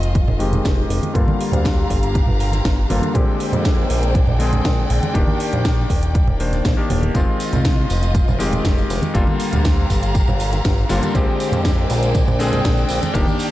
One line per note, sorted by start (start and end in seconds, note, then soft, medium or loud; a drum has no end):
0.00 0.24 F1 medium
0.00 0.37 D#3 medium
0.00 0.37 G#3 medium
0.00 0.37 C4 medium
0.00 0.38 F4 medium
0.00 1.13 F4 medium
0.00 1.13 D#5 medium
0.00 closed hi-hat medium
0.15 kick loud
0.15 closed hi-hat soft
0.15 high conga medium
0.28 0.61 F1 medium
0.28 low conga medium
0.39 1.12 D#3 medium
0.39 1.12 G#3 medium
0.39 1.12 C4 medium
0.39 1.13 G4 loud
0.39 open hi-hat medium
0.53 closed hi-hat medium
0.53 low conga medium
0.65 0.85 F1 medium
0.65 kick loud
0.65 snare loud
0.65 closed hi-hat soft
0.90 1.00 F1 medium
0.90 open hi-hat loud
1.03 closed hi-hat medium
1.03 high conga medium
1.14 1.25 G1 loud
1.14 2.86 D3 medium
1.14 2.87 G3 medium
1.14 2.87 A#3 medium
1.14 2.88 F4 loud
1.14 3.13 G4 medium
1.14 3.13 F5 medium
1.14 3.13 A#5 medium
1.14 kick loud
1.14 closed hi-hat medium
1.28 high conga loud
1.41 open hi-hat loud
1.52 1.86 D2 loud
1.52 closed hi-hat medium
1.52 low conga medium
1.65 kick loud
1.65 snare loud
1.65 closed hi-hat soft
1.90 2.24 G1 medium
1.90 kick medium
1.90 open hi-hat loud
2.03 closed hi-hat medium
2.15 kick loud
2.15 closed hi-hat soft
2.27 2.61 G1 medium
2.27 low conga medium
2.40 open hi-hat loud
2.52 snare soft
2.52 closed hi-hat medium
2.52 high conga medium
2.65 2.85 G1 medium
2.65 kick loud
2.65 snare loud
2.65 closed hi-hat medium
2.90 3.00 G1 medium
2.90 3.12 D3 medium
2.90 3.12 G3 medium
2.90 3.12 A#3 medium
2.90 3.12 F4 medium
2.90 open hi-hat loud
2.90 high conga medium
3.01 closed hi-hat medium
3.01 high conga medium
3.14 3.25 A#1 loud
3.14 4.37 D3 medium
3.14 4.37 G#3 medium
3.14 5.13 G#3 medium
3.14 5.13 A#3 medium
3.14 4.37 C4 medium
3.14 4.38 G4 medium
3.14 5.13 C5 medium
3.14 7.11 D5 medium
3.14 7.11 G5 medium
3.14 kick loud
3.14 closed hi-hat soft
3.40 open hi-hat loud
3.53 3.86 F2 loud
3.53 closed hi-hat medium
3.53 low conga medium
3.65 kick loud
3.65 snare loud
3.65 closed hi-hat soft
3.90 4.24 A#1 medium
3.90 open hi-hat loud
4.03 closed hi-hat medium
4.15 kick loud
4.15 closed hi-hat soft
4.15 high conga medium
4.27 4.61 A#1 loud
4.27 low conga medium
4.39 5.12 D3 medium
4.39 5.12 G#3 medium
4.39 5.12 C4 medium
4.39 5.13 G#4 medium
4.39 open hi-hat loud
4.53 closed hi-hat medium
4.53 low conga medium
4.65 4.85 A#1 medium
4.65 kick loud
4.65 snare loud
4.65 closed hi-hat soft
4.90 5.01 A#1 medium
4.90 open hi-hat loud
5.03 closed hi-hat medium
5.03 high conga medium
5.14 5.25 D#1 loud
5.14 6.37 D#3 medium
5.14 6.37 A#3 medium
5.14 6.38 D4 medium
5.14 6.38 G4 loud
5.14 kick loud
5.14 closed hi-hat soft
5.28 high conga medium
5.40 open hi-hat loud
5.53 5.86 A#1 loud
5.53 closed hi-hat medium
5.53 low conga medium
5.65 kick loud
5.65 snare loud
5.65 closed hi-hat soft
5.90 6.24 D#1 medium
5.90 kick medium
5.90 open hi-hat loud
6.03 closed hi-hat medium
6.15 kick loud
6.15 closed hi-hat soft
6.28 6.61 D#1 medium
6.28 low conga medium
6.40 6.75 D#3 medium
6.40 6.75 A#3 medium
6.40 6.75 D4 medium
6.40 6.75 C5 medium
6.40 open hi-hat loud
6.53 snare soft
6.53 closed hi-hat medium
6.53 high conga medium
6.65 6.75 A#1 medium
6.65 kick loud
6.65 snare loud
6.65 closed hi-hat soft
6.77 7.12 D#3 medium
6.77 7.12 A#3 medium
6.77 7.12 D4 medium
6.77 7.12 G4 medium
6.90 7.10 D#1 loud
6.90 open hi-hat loud
6.90 high conga medium
7.02 closed hi-hat medium
7.02 high conga medium
7.14 7.25 F1 medium
7.14 8.37 D#3 medium
7.14 8.37 G#3 medium
7.14 8.37 C4 medium
7.14 9.13 F4 medium
7.14 8.38 F4 medium
7.14 9.13 D#5 medium
7.14 kick loud
7.14 closed hi-hat soft
7.14 tambourine medium
7.40 open hi-hat loud
7.40 tambourine medium
7.53 7.86 C2 loud
7.53 closed hi-hat medium
7.53 tambourine soft
7.53 low conga medium
7.65 kick loud
7.65 snare loud
7.65 closed hi-hat soft
7.65 tambourine soft
7.90 8.24 F1 medium
7.90 open hi-hat loud
7.90 tambourine medium
8.03 closed hi-hat medium
8.03 tambourine soft
8.14 kick loud
8.14 closed hi-hat soft
8.14 tambourine medium
8.14 high conga medium
8.28 8.61 F1 loud
8.28 tambourine soft
8.28 low conga medium
8.38 9.11 D#3 medium
8.38 9.12 G#3 medium
8.38 9.12 C4 medium
8.38 9.12 G4 medium
8.38 open hi-hat loud
8.38 tambourine medium
8.52 closed hi-hat medium
8.52 tambourine soft
8.52 low conga medium
8.65 8.85 F1 medium
8.65 kick loud
8.65 snare loud
8.65 closed hi-hat soft
8.65 tambourine soft
8.78 tambourine soft
8.90 9.00 F1 medium
8.90 open hi-hat loud
8.90 tambourine medium
9.02 closed hi-hat medium
9.02 tambourine soft
9.02 high conga medium
9.14 9.25 G1 loud
9.14 10.86 D3 medium
9.14 10.87 G3 medium
9.14 10.87 A#3 medium
9.14 10.88 F4 loud
9.14 11.13 G4 medium
9.14 11.13 F5 medium
9.14 11.13 A#5 medium
9.14 kick loud
9.14 closed hi-hat soft
9.14 tambourine soft
9.27 high conga medium
9.40 open hi-hat loud
9.40 tambourine medium
9.53 9.86 D2 loud
9.53 closed hi-hat medium
9.53 tambourine soft
9.53 low conga medium
9.65 kick loud
9.65 snare loud
9.65 closed hi-hat medium
9.65 tambourine medium
9.90 10.24 G1 medium
9.90 kick medium
9.90 open hi-hat loud
9.90 tambourine medium
10.03 closed hi-hat medium
10.03 tambourine soft
10.15 kick loud
10.15 closed hi-hat soft
10.15 tambourine medium
10.28 10.61 G1 medium
10.28 tambourine soft
10.28 low conga medium
10.40 open hi-hat medium
10.40 tambourine medium
10.52 snare soft
10.52 closed hi-hat medium
10.52 tambourine soft
10.52 high conga medium
10.64 10.85 G1 medium
10.64 kick loud
10.64 snare loud
10.64 closed hi-hat medium
10.64 tambourine medium
10.78 tambourine soft
10.89 11.00 G1 medium
10.89 11.12 D3 medium
10.89 11.12 G3 medium
10.89 11.12 A#3 medium
10.89 11.12 F4 loud
10.89 open hi-hat loud
10.89 tambourine medium
10.89 high conga medium
11.03 closed hi-hat medium
11.03 tambourine soft
11.03 high conga medium
11.14 11.25 A#1 loud
11.14 12.36 D3 medium
11.14 12.37 G#3 medium
11.14 13.13 G#3 medium
11.14 13.13 A#3 medium
11.14 12.37 C4 medium
11.14 12.38 G4 medium
11.14 13.13 C5 medium
11.14 13.51 D5 medium
11.14 13.51 G5 medium
11.14 kick loud
11.14 closed hi-hat medium
11.14 tambourine soft
11.40 open hi-hat loud
11.40 tambourine medium
11.52 11.86 F2 loud
11.52 closed hi-hat medium
11.52 tambourine soft
11.52 low conga medium
11.65 kick loud
11.65 snare loud
11.65 closed hi-hat medium
11.65 tambourine medium
11.90 12.24 A#1 medium
11.90 open hi-hat medium
11.90 tambourine loud
12.03 closed hi-hat medium
12.03 tambourine soft
12.14 kick loud
12.14 closed hi-hat medium
12.14 tambourine medium
12.14 high conga medium
12.28 12.61 A#1 loud
12.28 tambourine soft
12.28 low conga medium
12.39 13.12 D3 medium
12.39 13.12 G#3 medium
12.39 13.12 C4 medium
12.39 13.13 G#4 loud
12.39 open hi-hat loud
12.39 tambourine medium
12.52 closed hi-hat medium
12.52 tambourine soft
12.52 low conga medium
12.65 12.85 A#1 medium
12.65 kick loud
12.65 snare loud
12.65 closed hi-hat medium
12.65 tambourine soft
12.77 tambourine soft
12.89 13.00 A#1 medium
12.89 open hi-hat loud
12.89 tambourine loud
13.03 closed hi-hat medium
13.03 tambourine soft
13.03 high conga medium
13.14 13.25 D#1 loud
13.14 13.51 D#3 medium
13.14 13.51 A#3 medium
13.14 13.51 D4 medium
13.14 13.51 G4 loud
13.14 kick loud
13.14 closed hi-hat medium
13.14 tambourine medium
13.27 tambourine soft
13.27 high conga medium
13.39 open hi-hat medium
13.39 tambourine loud